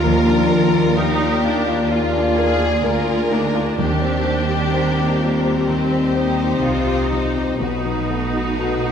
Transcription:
Already playing: D#2 A#3 D4 D#4 F4 A#4 D5 F5 A#5
0.02 D#2 F3 A#3 A#4 D5
0.28 A#3 D4
0.50 D4 A#4
0.74 F4
0.96 D#4 G4 A#4
1.20 F4 D5
1.44 D4 D#4 F5
1.67 F4 A#5
1.90 F4 G#4 F5
2.14 D4 A#5
2.36 G#4 A#4 F5
2.61 F4 D5
2.83 D2 F4 A#4
3.08 D4 F4
3.30 A#3 D4 D#4
3.55 D4 F4
3.78 D#2 D#3 G3 C4 G4
4.02 G3 C4
4.25 C4 C5
4.49 G4
4.72 C4 A#4 C5
4.95 G4 C5
5.19 F4 G5
5.43 G4 C5
5.66 D#2 C4 G4 C5 G5
5.90 C4 C5
6.14 D#4 C5 G5
6.39 G4 C5
6.62 C2 C3 F4 G4 C5
6.87 C4 G4
7.10 G3 D#4 F4
7.36 C4 G4
7.60 B1 B2 A3 D#4 F#4 B4
7.85 F#3 D#4
8.10 A3 A4
8.34 B3 F#4
8.59 F#4 A4
8.85 F#4 A4

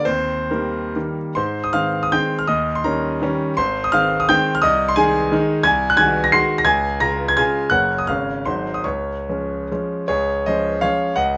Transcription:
0.05 D#2 C4 C5
0.51 D#3 G3 A#3 A#4
0.96 D#3 G3 A#3
1.35 G#2 C5 C6
1.64 D#6
1.73 D#3 G#3 C4 F5 F6
2.03 D#6
2.12 D#3 G#3 C4 G5 G6
2.39 F6
2.47 D#2 D#5 D#6
2.75 C6
2.84 D#3 G3 C#4 A#4 A#5
3.22 D#3 G3 C#4
3.57 G#1 C5 C6
3.84 D#6
3.92 D#3 G#3 C4 F5 F6
4.20 D#6
4.29 D#3 G#3 C4 G5 G6
4.55 F6
4.62 C2 D#5 D#6
4.88 C6
4.96 D#3 G#3 D#4 G#4 G#5
5.32 D#3 G#3 D#4
5.63 C2 G#5 G#6
5.90 F#6
5.97 D#3 G#3 F#4 G#5 G#6
6.24 A#6
6.32 D#3 G#3 F#4 C6 C7
6.58 A#6
6.65 C#2 G#5 G#6
7.00 C#3 G#3 F4 A#5 A#6
7.28 G#6
7.37 C#3 G#3 F4 G#5 G#6
7.70 F#1 C#3 A#3 C#4 F#5 F#6
7.98 D#6
8.07 G#1 C#3 G#3 C#4 F5 F6
8.46 G#1 F#3 G#3 D#4 C5 C6
8.74 D#6
8.84 C#2 C#5 C#6
9.29 F3 G#3 C#4
9.71 F3 G#3 C#4
10.08 C#2 G#4 C#5
10.46 F3 G#3 C#4 C5 D#5
10.81 F3 G#3 C#4 C#5 F5
11.16 C#2 D#5 F#5

